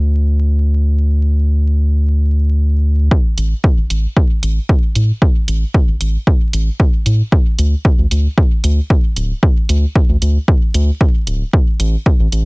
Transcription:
0.00 3.09 D2 medium
3.11 kick loud
3.38 3.54 A1 loud
3.38 closed hi-hat medium
3.64 kick loud
3.77 3.85 A1 medium
3.90 4.06 A1 medium
3.90 closed hi-hat medium
4.17 kick loud
4.43 4.59 A1 loud
4.43 closed hi-hat medium
4.69 kick loud
4.95 5.12 A2 medium
4.95 closed hi-hat medium
5.22 kick loud
5.48 5.64 A1 loud
5.48 closed hi-hat medium
5.74 kick loud
5.88 5.96 A1 medium
6.01 6.17 A1 medium
6.01 closed hi-hat medium
6.27 kick loud
6.53 6.70 A1 loud
6.53 closed hi-hat medium
6.80 kick loud
7.06 7.22 A2 medium
7.06 closed hi-hat medium
7.32 kick loud
7.59 7.75 D2 loud
7.59 closed hi-hat medium
7.85 kick loud
7.98 8.06 D2 medium
8.11 8.27 D2 medium
8.11 closed hi-hat medium
8.38 kick loud
8.64 8.80 D2 loud
8.64 closed hi-hat medium
8.90 kick loud
9.16 9.33 D1 medium
9.16 closed hi-hat medium
9.43 kick loud
9.69 9.85 D2 loud
9.69 closed hi-hat medium
9.95 kick loud
10.09 10.17 D2 medium
10.22 10.38 D2 medium
10.22 closed hi-hat medium
10.48 kick loud
10.74 10.91 D2 loud
10.74 closed hi-hat medium
11.01 kick loud
11.27 11.43 D1 loud
11.27 closed hi-hat medium
11.53 kick loud
11.80 11.96 A1 loud
11.80 closed hi-hat medium
12.06 kick loud
12.20 12.27 A1 medium
12.32 12.45 A1 medium
12.32 closed hi-hat medium

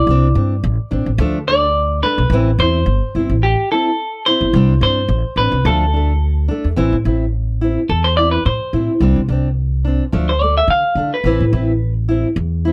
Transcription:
0.00 1.47 D5 medium
0.07 0.31 C2 loud
0.07 0.27 C4 medium
0.07 0.27 D4 medium
0.07 muted steel-string acoustic guitar stroke medium
0.35 0.59 G2 loud
0.35 0.54 C4 soft
0.35 0.53 D4 soft
0.64 0.76 A1 loud
0.91 1.04 A1 medium
0.91 1.10 C4 soft
0.91 1.09 D4 medium
1.06 1.17 A1 medium
1.18 2.01 D2 loud
1.18 1.37 F3 medium
1.18 1.37 A3 medium
1.18 1.38 D4 medium
1.48 1.67 A3 soft
1.48 1.65 D4 medium
1.48 2.00 D5 loud
2.03 2.22 A3 soft
2.03 2.21 D4 medium
2.03 2.59 B4 medium
2.18 2.29 B1 medium
2.30 2.54 A1 loud
2.30 2.49 E3 medium
2.30 2.50 C4 medium
2.34 2.50 E4 medium
2.59 2.82 E2 loud
2.59 2.78 E4 medium
2.59 3.46 C5 medium
2.63 2.79 C4 soft
2.86 2.99 G1 medium
3.15 3.27 G1 medium
3.15 3.34 C4 soft
3.15 3.33 E4 medium
3.29 3.53 A1 medium
3.43 3.69 G4 medium
3.72 3.90 C4 soft
3.72 3.89 E4 medium
3.72 4.23 A4 medium
4.26 4.45 E4 medium
4.26 4.78 C5 medium
4.31 4.46 C4 soft
4.41 4.52 G1 medium
4.53 4.77 C2 loud
4.53 4.72 G3 medium
4.53 4.73 C4 medium
4.53 4.73 D4 medium
4.81 5.05 G2 medium
4.81 5.01 C4 soft
4.81 5.00 D4 medium
4.81 5.37 C5 medium
5.09 5.22 A1 loud
5.36 5.50 A1 medium
5.36 5.56 D4 soft
5.36 5.67 B4 medium
5.40 5.57 C4 soft
5.52 5.63 C2 medium
5.65 6.48 D2 loud
5.65 5.84 F3 medium
5.65 5.84 A3 medium
5.65 5.84 D4 medium
5.65 6.46 A4 medium
5.93 6.13 A3 soft
5.93 6.11 D4 medium
6.48 6.68 A3 soft
6.48 6.67 D4 medium
6.64 6.75 E2 medium
6.76 6.90 A1 medium
6.76 6.95 E3 medium
6.76 6.95 C4 medium
6.76 6.96 E4 medium
6.93 7.04 A2 medium
7.05 7.76 A1 medium
7.05 7.24 C4 soft
7.05 7.23 E4 medium
7.61 7.81 C4 soft
7.61 7.79 E4 medium
7.89 8.36 E2 medium
7.89 8.04 A4 medium
8.04 8.17 C5 medium
8.17 8.37 C4 soft
8.17 8.36 E4 medium
8.17 8.31 D5 loud
8.31 8.45 B4 medium
8.46 8.58 A2 medium
8.46 8.98 C5 medium
8.73 8.86 A2 medium
8.73 8.93 C4 soft
8.73 8.91 E4 medium
9.00 9.14 C2 medium
9.00 9.19 G3 medium
9.00 9.20 C4 medium
9.00 9.20 D4 medium
9.16 9.27 C3 medium
9.28 9.99 C2 medium
9.28 9.49 C4 soft
9.28 9.48 D4 medium
9.85 10.04 C4 soft
9.85 10.03 D4 medium
10.12 10.60 D2 medium
10.12 10.31 F3 medium
10.12 10.31 A3 medium
10.12 10.31 D4 medium
10.29 10.42 C5 medium
10.41 10.60 A3 soft
10.41 10.56 D5 medium
10.41 muted steel-string acoustic guitar stroke medium
10.58 10.70 E5 medium
10.68 10.81 D3 medium
10.68 11.10 F5 medium
10.95 11.09 D3 medium
10.95 11.16 A3 soft
10.95 11.15 D4 medium
11.14 11.93 B4 medium
11.24 11.37 A1 medium
11.24 11.43 E3 medium
11.24 11.43 C4 medium
11.24 11.44 E4 medium
11.40 11.51 A2 medium
11.53 12.23 A1 medium
11.53 11.72 C4 soft
11.53 11.71 E4 medium
12.09 12.28 C4 medium
12.09 12.27 E4 medium
12.36 12.72 E2 loud
12.65 12.72 C4 medium
12.65 12.72 E4 medium

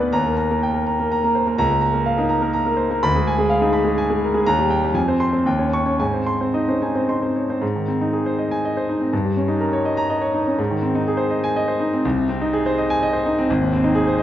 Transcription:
0.00 0.16 D2 medium
0.00 0.16 B3 medium
0.00 0.16 D#4 soft
0.00 0.16 B4 medium
0.00 0.15 D5 soft
0.00 0.15 F5 medium
0.00 0.16 G#5 medium
0.00 0.15 B5 medium
0.13 1.55 D#2 medium
0.13 0.32 A#5 medium
0.26 0.45 A#3 soft
0.26 0.45 A#4 medium
0.37 0.57 A#5 medium
0.51 0.70 A#3 medium
0.51 0.70 A#4 medium
0.63 0.82 G5 medium
0.74 0.94 A#4 medium
0.87 1.06 A#5 medium
1.00 1.19 A#3 medium
1.00 1.19 A#4 medium
1.12 1.31 A#5 medium
1.24 1.43 A#3 medium
1.24 1.43 A#4 medium
1.35 1.47 C5 medium
1.47 1.59 A#3 medium
1.47 1.59 A#4 medium
1.58 2.98 C#2 medium
1.58 1.78 A#5 medium
1.70 1.89 A#3 medium
1.70 1.89 A#4 medium
1.81 2.01 A#5 medium
1.93 2.13 A#3 medium
1.93 2.13 A#4 medium
2.06 2.25 F5 medium
2.18 2.30 D#4 medium
2.18 2.37 A#4 medium
2.29 2.49 A#5 medium
2.41 2.61 A#3 medium
2.41 2.61 A#4 medium
2.53 2.73 A#5 medium
2.66 2.86 A#3 medium
2.66 2.86 A#4 medium
2.77 2.90 C5 medium
2.91 3.02 A#3 medium
2.91 3.03 A#4 medium
3.03 4.42 D2 medium
3.03 3.22 B5 loud
3.15 3.34 G#3 medium
3.15 3.34 G#4 medium
3.27 3.46 G#5 medium
3.38 3.57 G#3 medium
3.38 3.57 G#4 medium
3.50 3.69 F5 medium
3.61 3.73 D#4 medium
3.61 3.81 G#4 medium
3.73 3.92 B5 medium
3.84 4.04 G#3 medium
3.84 4.04 G#4 medium
3.98 4.17 G#5 medium
4.10 4.29 G#3 medium
4.10 4.29 G#4 medium
4.24 4.35 A#4 medium
4.34 4.46 G#3 medium
4.34 4.46 G#4 medium
4.46 4.94 D#2 medium
4.46 4.66 A#5 loud
4.59 4.78 G3 medium
4.59 4.78 G4 medium
4.70 4.90 G5 medium
4.84 4.95 G3 medium
4.84 4.95 G4 medium
4.94 5.43 F2 medium
4.94 5.15 G#5 medium
5.08 5.28 C4 medium
5.08 5.28 C5 medium
5.20 5.40 C6 medium
5.32 5.45 C4 medium
5.32 5.45 C5 medium
5.46 5.97 D#2 medium
5.46 5.67 G5 medium
5.59 5.80 C#4 medium
5.59 5.80 C#5 medium
5.73 5.94 C#6 medium
5.86 5.99 C#4 medium
5.86 5.99 C#5 medium
5.99 7.58 G#2 medium
5.99 6.21 G#5 medium
6.14 6.35 C4 soft
6.14 6.35 C5 soft
6.26 6.48 C6 medium
6.41 6.62 C4 medium
6.41 6.62 C5 medium
6.54 6.75 D#4 medium
6.54 6.75 D#5 medium
6.68 6.81 C#4 soft
6.68 6.90 C5 medium
6.82 7.03 D#4 soft
6.82 7.03 G#5 medium
6.95 7.17 C4 soft
6.95 7.17 C5 medium
7.09 7.30 D#4 soft
7.09 7.30 C6 medium
7.22 7.44 C4 soft
7.22 7.44 C5 soft
7.36 7.49 C#5 soft
7.50 7.63 C4 medium
7.50 7.62 C5 medium
7.62 9.08 G#2 medium
7.76 7.96 D#3 soft
7.88 8.08 C4 medium
8.01 8.21 D#4 medium
8.13 8.33 G#4 medium
8.26 8.46 C5 medium
8.39 8.58 D#5 medium
8.51 8.71 G#5 medium
8.65 8.83 D#5 medium
8.77 8.95 C5 medium
8.89 9.08 D#4 medium
9.01 9.12 C4 medium
9.13 10.55 G2 medium
9.25 9.44 G3 medium
9.37 9.56 C#4 medium
9.48 9.68 D#4 medium
9.61 9.80 A#4 medium
9.73 9.92 C#5 medium
9.85 10.05 D#5 medium
9.97 10.17 A#5 medium
10.10 10.29 D#5 medium
10.22 10.41 C#5 medium
10.34 10.54 D#4 medium
10.47 10.59 C#4 medium
10.59 12.00 G#2 medium
10.71 10.90 D#3 medium
10.82 11.02 C4 medium
10.95 11.14 D#4 medium
11.08 11.26 G#4 medium
11.17 11.37 C5 medium
11.30 11.50 D#5 medium
11.44 11.63 G#5 medium
11.56 11.75 D#5 medium
11.68 11.87 C5 medium
11.80 11.99 D#4 medium
11.93 12.05 C4 medium
12.05 13.45 C2 medium
12.17 12.36 C3 medium
12.29 12.48 C4 medium
12.41 12.60 D#4 medium
12.53 12.73 G#4 medium
12.66 12.85 C5 medium
12.78 12.97 D#5 medium
12.90 13.09 G#5 medium
13.03 13.21 D#5 medium
13.13 13.32 C5 medium
13.26 13.44 D#4 medium
13.38 13.49 C4 medium
13.50 14.23 G#1 medium
13.61 13.80 D#2 medium
13.73 13.92 C4 medium
13.84 14.03 D#4 medium
13.95 14.15 G#4 medium
14.07 14.23 C5 medium
14.18 14.23 D#5 medium

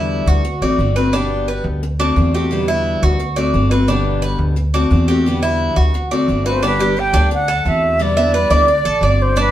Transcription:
0.00 0.21 E2 medium
0.00 0.43 B2 medium
0.00 0.43 D3 medium
0.00 0.44 G3 medium
0.00 0.44 B3 medium
0.00 0.26 E4 medium
0.00 0.45 E4 medium
0.26 0.59 D2 medium
0.26 0.61 F#4 medium
0.45 muted steel-string acoustic guitar stroke medium
0.61 0.77 A1 medium
0.61 0.78 A3 medium
0.61 0.79 C4 medium
0.61 0.78 F#4 medium
0.61 0.95 D5 medium
0.78 1.59 G1 medium
0.78 0.95 D3 soft
0.78 0.96 A3 soft
0.78 0.96 C4 medium
0.78 0.95 F#4 soft
0.96 1.14 A3 medium
0.96 1.13 C4 medium
0.96 1.13 F#4 medium
0.96 1.13 B4 medium
1.13 1.82 B2 medium
1.13 1.82 D3 medium
1.13 1.82 G3 medium
1.13 1.82 B3 medium
1.13 1.47 D4 medium
1.13 1.83 G4 medium
1.48 1.65 B4 medium
1.64 2.12 D2 medium
1.83 muted steel-string acoustic guitar stroke medium
1.99 2.16 A3 medium
1.99 2.16 C4 medium
1.99 2.33 D4 medium
1.99 2.16 F#4 medium
2.16 2.96 E2 medium
2.16 2.33 D3 soft
2.16 2.33 A3 soft
2.16 2.33 C4 medium
2.16 2.33 F#4 soft
2.34 2.51 A3 soft
2.34 2.51 C4 medium
2.34 2.51 F#4 medium
2.34 2.67 G4 medium
2.51 3.19 B2 medium
2.51 3.18 D3 medium
2.51 3.19 G3 medium
2.51 3.20 B3 medium
2.51 3.20 E4 medium
2.68 3.01 E4 medium
3.02 3.50 D2 medium
3.02 3.36 F#4 medium
3.19 muted steel-string acoustic guitar stroke medium
3.36 3.53 A3 medium
3.36 3.53 C4 medium
3.36 3.53 F#4 medium
3.36 3.70 D5 medium
3.54 4.34 G1 medium
3.54 3.70 D3 soft
3.54 3.71 A3 soft
3.54 3.70 C4 medium
3.54 3.70 F#4 soft
3.71 3.88 A3 medium
3.71 3.88 C4 medium
3.71 3.88 F#4 medium
3.71 3.88 B4 medium
3.88 4.56 B2 medium
3.88 4.55 D3 medium
3.88 4.56 G3 medium
3.88 4.57 B3 medium
3.88 4.21 D4 medium
3.88 4.57 G4 medium
4.22 4.39 B4 medium
4.39 4.87 D2 medium
4.56 muted steel-string acoustic guitar stroke medium
4.74 4.90 A3 medium
4.74 4.90 C4 medium
4.74 5.07 D4 medium
4.74 4.91 F#4 medium
4.90 5.71 E2 medium
4.90 5.07 D3 soft
4.90 5.08 A3 soft
4.90 5.08 C4 medium
4.90 5.08 F#4 medium
5.08 5.26 A3 medium
5.08 5.25 C4 medium
5.08 5.25 F#4 medium
5.08 5.41 G4 medium
5.26 5.94 B2 medium
5.26 5.93 D3 medium
5.26 5.94 G3 medium
5.26 5.94 B3 medium
5.26 5.95 E4 medium
5.43 5.76 E4 medium
5.76 6.24 D2 medium
5.76 6.10 F#4 medium
5.94 muted steel-string acoustic guitar stroke medium
6.11 6.28 A3 medium
6.11 6.28 C4 medium
6.11 6.28 F#4 medium
6.11 6.45 D5 medium
6.28 7.08 G1 medium
6.28 6.45 D3 soft
6.28 6.45 A3 medium
6.28 6.45 C4 soft
6.28 6.45 F#4 soft
6.46 6.63 A3 medium
6.46 6.63 C4 medium
6.46 6.62 F#4 medium
6.46 6.62 B4 medium
6.46 6.63 C5 medium
6.62 6.79 B2 medium
6.62 6.79 D3 medium
6.62 6.79 G3 medium
6.62 6.78 B3 medium
6.62 6.79 D4 medium
6.62 6.78 G4 medium
6.62 7.01 B4 medium
6.79 6.95 D3 medium
6.79 6.95 G3 medium
6.79 6.96 B3 medium
6.79 6.96 G4 medium
6.79 7.13 G4 medium
6.97 7.13 D3 medium
6.97 7.13 G3 medium
6.97 7.13 B3 medium
6.97 7.13 G4 medium
6.97 7.32 G5 medium
7.13 7.61 D2 loud
7.13 7.30 D3 medium
7.13 7.31 G3 medium
7.13 7.31 B3 medium
7.13 7.47 D4 medium
7.13 7.30 G4 medium
7.31 7.65 F#5 medium
7.31 muted steel-string acoustic guitar stroke medium
7.48 7.81 A4 medium
7.65 8.45 E2 loud
7.65 7.98 D3 medium
7.65 7.99 A3 medium
7.65 7.99 C4 soft
7.65 8.00 F#4 medium
7.65 8.04 E5 medium
7.99 8.16 B2 medium
7.99 8.16 D3 medium
7.99 8.16 G3 medium
7.99 8.16 B3 medium
7.99 8.16 E4 medium
7.99 9.24 D5 loud
8.17 8.33 D3 medium
8.17 8.34 G3 medium
8.17 8.34 B3 medium
8.17 8.33 E4 medium
8.17 8.33 E5 medium
8.34 8.51 D3 medium
8.34 8.50 G3 medium
8.34 8.50 B3 medium
8.34 8.49 E4 medium
8.34 8.50 B4 medium
8.50 8.82 D2 medium
8.50 8.67 D3 medium
8.50 8.68 G3 medium
8.50 8.67 B3 medium
8.50 8.67 E4 medium
8.50 8.84 D5 medium
8.68 muted steel-string acoustic guitar stroke medium
8.85 9.00 A1 medium
8.85 9.02 A4 medium
9.01 9.51 G1 medium
9.01 9.35 D3 soft
9.01 9.36 A3 soft
9.01 9.36 C4 medium
9.01 9.37 F#4 medium
9.01 9.36 D5 medium
9.22 9.38 C5 medium
9.36 9.51 B2 medium
9.36 9.51 D3 medium
9.36 9.51 G3 medium
9.36 9.51 B3 medium
9.36 9.51 D4 medium
9.36 9.51 G4 medium
9.40 9.51 B4 medium

